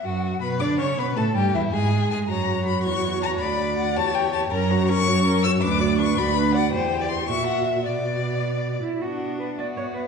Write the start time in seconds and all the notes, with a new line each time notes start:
0.03 F#2 F#3 F#4 F#5
0.41 B2 B3 B4 B5
0.60 D3 D4 D5 D6
0.79 C#3 C#4 C#5 C#6
0.98 B2 B3 B4 B5
1.16 A2 A3 A4 A5
1.34 G2 G3 G4 G5
1.54 E2 E3 E4 E5
1.72 G#2 G#3 G#4 G#5
2.10 G#2 G#3 G#4 G#5
2.29 F#2 F#4 C#5 A#5
2.66 B5
2.84 E2 C#5 C#6
3.23 A#5
3.40 D2 D5 B5
3.78 F#5
3.97 E2 G4 C#5 A5
4.15 G5
4.33 A5
4.52 F#2 C#4 A#4 A#5
4.71 F#4 C#5
4.88 C#4 A#4 C#6
5.07 F#2 F#4 C#5
5.25 C#4 A#4
5.44 F#4 C#5 E6
5.62 D2 D4 B4 D6
5.80 F#4 D5
5.99 D4 B4 C#6
6.17 D2 F#4 D5 B5
6.36 D4 B4
6.54 F#4 D5 F#5
6.72 E2 G4 C5 G5
7.01 D5
7.09 C6
7.28 A#2 F#4 E5 C#6
7.47 F#5
7.66 E5
7.85 B2 F#4 D5
8.83 E4
9.00 B3 D4 F#4 F#5
9.40 B4
9.58 B3 F#4 D5 E5
9.77 C#5
9.95 B4